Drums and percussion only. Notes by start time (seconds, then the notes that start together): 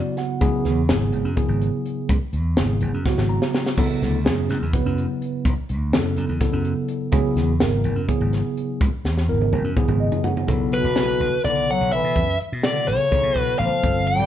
0.17 snare, closed hi-hat
0.41 kick, closed hi-hat
0.65 snare, closed hi-hat
0.89 snare, closed hi-hat
1.12 closed hi-hat
1.37 kick, closed hi-hat
1.62 closed hi-hat
1.86 closed hi-hat
2.09 kick, closed hi-hat
2.33 closed hi-hat
2.57 snare, closed hi-hat
2.81 closed hi-hat
3.06 kick, snare
3.18 snare
3.42 snare
3.55 snare
3.66 snare
3.78 kick, closed hi-hat, crash
4.02 snare, closed hi-hat
4.26 snare, closed hi-hat
4.50 snare, closed hi-hat
4.73 kick, closed hi-hat
4.98 closed hi-hat
5.22 closed hi-hat
5.45 kick, closed hi-hat
5.69 closed hi-hat
5.93 snare, closed hi-hat
6.17 closed hi-hat
6.41 kick, snare, closed hi-hat
6.65 closed hi-hat
6.89 closed hi-hat
7.12 kick, closed hi-hat
7.37 snare, closed hi-hat
7.60 snare, closed hi-hat
7.84 closed hi-hat
8.09 kick, closed hi-hat
8.33 snare, closed hi-hat
8.57 closed hi-hat
8.81 kick, closed hi-hat
9.05 snare
9.18 snare
9.41 high tom
9.53 high tom
9.77 kick, mid tom
9.89 mid tom
10.12 floor tom
10.24 floor tom
10.37 floor tom
10.48 kick, closed hi-hat
10.72 snare, closed hi-hat
10.96 snare, closed hi-hat
11.21 closed hi-hat
11.44 closed hi-hat
11.68 closed hi-hat
11.92 closed hi-hat
12.15 kick, closed hi-hat
12.40 closed hi-hat
12.63 snare, closed hi-hat
12.88 snare, closed hi-hat
13.12 kick, closed hi-hat
13.35 kick, closed hi-hat
13.60 closed hi-hat
13.83 kick, closed hi-hat
14.08 closed hi-hat